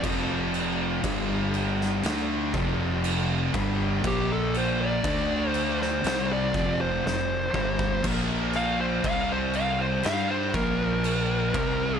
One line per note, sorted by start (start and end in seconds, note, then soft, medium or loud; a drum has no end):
0.04 1.00 F1 loud
0.04 1.04 F2 loud
0.04 1.06 C3 loud
0.04 1.06 F3 loud
0.04 kick loud
0.04 crash medium
0.54 crash medium
1.04 2.00 G1 medium
1.04 2.03 G2 loud
1.04 2.03 D3 loud
1.04 2.04 G3 loud
1.04 kick loud
1.04 crash medium
1.54 crash medium
1.82 snare soft
2.03 2.51 D2 loud
2.03 2.53 D3 loud
2.03 2.53 A3 loud
2.03 2.54 D4 loud
2.03 snare loud
2.03 crash medium
2.54 3.50 F1 loud
2.54 3.53 F2 loud
2.54 3.53 C3 loud
2.54 3.53 F3 loud
2.54 kick loud
2.54 crash medium
3.04 crash medium
3.54 4.01 G1 loud
3.54 4.03 G2 loud
3.54 4.03 D3 loud
3.54 4.04 G3 loud
3.54 kick loud
3.54 crash medium
4.04 5.00 A#1 loud
4.04 5.03 A#2 loud
4.04 5.03 F3 loud
4.04 5.04 A#3 loud
4.04 4.30 G4 loud
4.04 kick loud
4.04 crash medium
4.33 4.55 A4 loud
4.54 4.80 C5 medium
4.54 crash medium
4.81 5.48 D5 loud
5.04 6.00 D2 medium
5.04 6.03 D3 loud
5.04 6.04 A3 loud
5.04 6.04 D4 loud
5.04 kick loud
5.04 crash medium
5.48 5.77 C5 loud
5.54 crash medium
5.82 6.29 C5 loud
5.82 snare soft
6.04 6.51 C2 loud
6.04 6.53 C3 loud
6.04 6.53 G3 loud
6.04 6.54 C4 loud
6.04 snare loud
6.04 crash loud
6.33 6.80 D5 loud
6.54 7.01 F1 loud
6.54 7.03 F2 loud
6.54 7.03 C3 loud
6.54 7.04 F3 loud
6.54 kick loud
6.54 crash medium
6.81 7.04 C5 loud
7.04 7.52 F1 medium
7.04 7.44 F2 medium
7.04 7.45 C3 medium
7.04 8.02 C5 loud
7.04 snare medium
7.54 8.01 G1 loud
7.54 8.03 G2 loud
7.54 8.03 D3 loud
7.54 8.04 G3 loud
7.54 kick loud
7.79 kick loud
8.04 9.00 A#1 medium
8.04 9.03 A#2 loud
8.04 9.04 F3 loud
8.04 9.04 A#3 loud
8.04 kick loud
8.04 crash loud
8.04 crash medium
8.53 8.80 F5 loud
8.53 crash medium
8.81 9.04 C5 loud
9.04 10.00 C2 medium
9.04 10.03 C3 loud
9.04 10.03 G3 loud
9.04 10.04 C4 loud
9.04 9.30 F5 loud
9.04 kick loud
9.04 crash medium
9.32 9.55 C5 loud
9.53 9.79 F5 loud
9.53 crash medium
9.81 10.05 C5 loud
10.03 10.51 G2 medium
10.03 10.53 G3 loud
10.03 10.53 D4 loud
10.03 10.54 G4 loud
10.03 10.29 F5 loud
10.03 snare loud
10.03 crash loud
10.30 10.54 C5 loud
10.54 11.51 A#1 loud
10.54 11.53 A#2 loud
10.54 11.53 F3 loud
10.54 11.54 A#3 loud
10.54 12.00 A#4 loud
10.54 kick loud
10.54 crash medium
11.04 crash medium
11.54 12.00 C2 loud
11.54 12.00 C3 loud
11.54 12.00 G3 loud
11.54 12.00 C4 loud
11.54 kick loud
11.54 crash medium